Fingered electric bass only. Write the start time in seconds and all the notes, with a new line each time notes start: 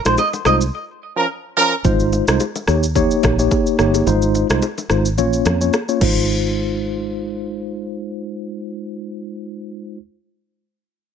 0.05 A#1
0.46 C2
1.85 G#1
2.28 C2
2.68 D#2
3.24 A#1
3.79 G1
4.07 G#1
4.50 C2
4.90 G#1
5.18 A#1
5.46 F2
6.01 G#1